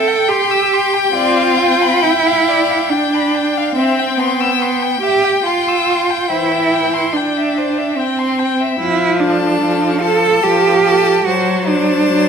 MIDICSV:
0, 0, Header, 1, 5, 480
1, 0, Start_track
1, 0, Key_signature, 0, "major"
1, 0, Tempo, 869565
1, 626, Time_signature, 3, 2, 24, 8
1, 1597, Tempo, 849858
1, 3517, Tempo, 825309
1, 7003, End_track
2, 0, Start_track
2, 0, Title_t, "Violin"
2, 0, Program_c, 0, 40
2, 0, Note_on_c, 0, 79, 83
2, 2062, Note_off_c, 0, 79, 0
2, 2079, Note_on_c, 0, 79, 72
2, 4943, Note_off_c, 0, 79, 0
2, 5206, Note_on_c, 0, 81, 59
2, 5671, Note_off_c, 0, 81, 0
2, 5688, Note_on_c, 0, 81, 61
2, 6153, Note_off_c, 0, 81, 0
2, 6169, Note_on_c, 0, 81, 62
2, 6400, Note_off_c, 0, 81, 0
2, 6411, Note_on_c, 0, 81, 49
2, 6637, Note_off_c, 0, 81, 0
2, 6640, Note_on_c, 0, 81, 63
2, 7003, Note_off_c, 0, 81, 0
2, 7003, End_track
3, 0, Start_track
3, 0, Title_t, "Violin"
3, 0, Program_c, 1, 40
3, 43, Note_on_c, 1, 79, 64
3, 163, Note_on_c, 1, 84, 73
3, 171, Note_off_c, 1, 79, 0
3, 282, Note_on_c, 1, 88, 63
3, 291, Note_off_c, 1, 84, 0
3, 403, Note_on_c, 1, 84, 68
3, 411, Note_off_c, 1, 88, 0
3, 517, Note_on_c, 1, 79, 63
3, 525, Note_off_c, 1, 84, 0
3, 630, Note_off_c, 1, 79, 0
3, 638, Note_on_c, 1, 74, 74
3, 755, Note_on_c, 1, 77, 70
3, 763, Note_off_c, 1, 74, 0
3, 870, Note_on_c, 1, 79, 64
3, 879, Note_off_c, 1, 77, 0
3, 1005, Note_on_c, 1, 83, 64
3, 1013, Note_off_c, 1, 79, 0
3, 1129, Note_on_c, 1, 79, 65
3, 1137, Note_off_c, 1, 83, 0
3, 1250, Note_on_c, 1, 77, 61
3, 1258, Note_off_c, 1, 79, 0
3, 1373, Note_on_c, 1, 74, 71
3, 1381, Note_off_c, 1, 77, 0
3, 1489, Note_on_c, 1, 77, 60
3, 1498, Note_off_c, 1, 74, 0
3, 1613, Note_on_c, 1, 79, 60
3, 1622, Note_off_c, 1, 77, 0
3, 1740, Note_on_c, 1, 83, 57
3, 1748, Note_off_c, 1, 79, 0
3, 1853, Note_on_c, 1, 79, 61
3, 1862, Note_off_c, 1, 83, 0
3, 1981, Note_on_c, 1, 77, 65
3, 1990, Note_off_c, 1, 79, 0
3, 2091, Note_off_c, 1, 77, 0
3, 2093, Note_on_c, 1, 76, 71
3, 2220, Note_on_c, 1, 79, 62
3, 2228, Note_off_c, 1, 76, 0
3, 2332, Note_on_c, 1, 84, 62
3, 2341, Note_off_c, 1, 79, 0
3, 2450, Note_on_c, 1, 88, 67
3, 2459, Note_off_c, 1, 84, 0
3, 2570, Note_on_c, 1, 84, 61
3, 2579, Note_off_c, 1, 88, 0
3, 2687, Note_on_c, 1, 79, 57
3, 2696, Note_off_c, 1, 84, 0
3, 2804, Note_on_c, 1, 76, 66
3, 2812, Note_off_c, 1, 79, 0
3, 2923, Note_on_c, 1, 79, 61
3, 2932, Note_off_c, 1, 76, 0
3, 3045, Note_on_c, 1, 84, 65
3, 3053, Note_off_c, 1, 79, 0
3, 3172, Note_on_c, 1, 88, 62
3, 3181, Note_off_c, 1, 84, 0
3, 3296, Note_on_c, 1, 84, 62
3, 3305, Note_off_c, 1, 88, 0
3, 3410, Note_on_c, 1, 79, 66
3, 3419, Note_off_c, 1, 84, 0
3, 3522, Note_off_c, 1, 79, 0
3, 3530, Note_on_c, 1, 72, 69
3, 3644, Note_on_c, 1, 76, 64
3, 3653, Note_off_c, 1, 72, 0
3, 3772, Note_on_c, 1, 79, 63
3, 3781, Note_off_c, 1, 76, 0
3, 3890, Note_on_c, 1, 84, 62
3, 3899, Note_off_c, 1, 79, 0
3, 4023, Note_on_c, 1, 79, 61
3, 4032, Note_off_c, 1, 84, 0
3, 4142, Note_on_c, 1, 76, 61
3, 4151, Note_off_c, 1, 79, 0
3, 4266, Note_on_c, 1, 72, 63
3, 4275, Note_off_c, 1, 76, 0
3, 4381, Note_on_c, 1, 76, 55
3, 4389, Note_off_c, 1, 72, 0
3, 4507, Note_on_c, 1, 79, 60
3, 4516, Note_off_c, 1, 76, 0
3, 4618, Note_on_c, 1, 84, 57
3, 4627, Note_off_c, 1, 79, 0
3, 4737, Note_on_c, 1, 79, 61
3, 4746, Note_off_c, 1, 84, 0
3, 4861, Note_on_c, 1, 76, 66
3, 4869, Note_off_c, 1, 79, 0
3, 4973, Note_off_c, 1, 76, 0
3, 5210, Note_on_c, 1, 69, 64
3, 5673, Note_off_c, 1, 69, 0
3, 5691, Note_on_c, 1, 69, 66
3, 6154, Note_off_c, 1, 69, 0
3, 6165, Note_on_c, 1, 69, 59
3, 6398, Note_off_c, 1, 69, 0
3, 6414, Note_on_c, 1, 72, 59
3, 6635, Note_off_c, 1, 72, 0
3, 6638, Note_on_c, 1, 72, 61
3, 7003, Note_off_c, 1, 72, 0
3, 7003, End_track
4, 0, Start_track
4, 0, Title_t, "Cello"
4, 0, Program_c, 2, 42
4, 0, Note_on_c, 2, 69, 96
4, 160, Note_on_c, 2, 67, 91
4, 168, Note_off_c, 2, 69, 0
4, 626, Note_off_c, 2, 67, 0
4, 629, Note_on_c, 2, 65, 102
4, 1119, Note_on_c, 2, 64, 98
4, 1128, Note_off_c, 2, 65, 0
4, 1601, Note_on_c, 2, 62, 90
4, 1609, Note_off_c, 2, 64, 0
4, 2078, Note_off_c, 2, 62, 0
4, 2081, Note_on_c, 2, 60, 84
4, 2320, Note_on_c, 2, 59, 89
4, 2328, Note_off_c, 2, 60, 0
4, 2789, Note_off_c, 2, 59, 0
4, 2793, Note_on_c, 2, 67, 94
4, 3031, Note_off_c, 2, 67, 0
4, 3038, Note_on_c, 2, 65, 90
4, 3522, Note_on_c, 2, 64, 86
4, 3530, Note_off_c, 2, 65, 0
4, 4004, Note_on_c, 2, 62, 87
4, 4012, Note_off_c, 2, 64, 0
4, 4491, Note_on_c, 2, 60, 85
4, 4500, Note_off_c, 2, 62, 0
4, 4968, Note_off_c, 2, 60, 0
4, 4972, Note_on_c, 2, 64, 98
4, 5206, Note_on_c, 2, 62, 82
4, 5215, Note_off_c, 2, 64, 0
4, 5683, Note_on_c, 2, 69, 95
4, 5692, Note_off_c, 2, 62, 0
4, 5925, Note_on_c, 2, 67, 92
4, 5934, Note_off_c, 2, 69, 0
4, 6406, Note_on_c, 2, 66, 86
4, 6415, Note_off_c, 2, 67, 0
4, 6649, Note_on_c, 2, 62, 95
4, 6658, Note_off_c, 2, 66, 0
4, 7003, Note_off_c, 2, 62, 0
4, 7003, End_track
5, 0, Start_track
5, 0, Title_t, "Viola"
5, 0, Program_c, 3, 41
5, 621, Note_on_c, 3, 60, 74
5, 1028, Note_off_c, 3, 60, 0
5, 2080, Note_on_c, 3, 60, 77
5, 2477, Note_off_c, 3, 60, 0
5, 3518, Note_on_c, 3, 52, 74
5, 3920, Note_off_c, 3, 52, 0
5, 4976, Note_on_c, 3, 53, 83
5, 5391, Note_off_c, 3, 53, 0
5, 5449, Note_on_c, 3, 53, 76
5, 5865, Note_off_c, 3, 53, 0
5, 5925, Note_on_c, 3, 53, 78
5, 6346, Note_off_c, 3, 53, 0
5, 6403, Note_on_c, 3, 54, 77
5, 6821, Note_off_c, 3, 54, 0
5, 6878, Note_on_c, 3, 54, 78
5, 7003, Note_off_c, 3, 54, 0
5, 7003, End_track
0, 0, End_of_file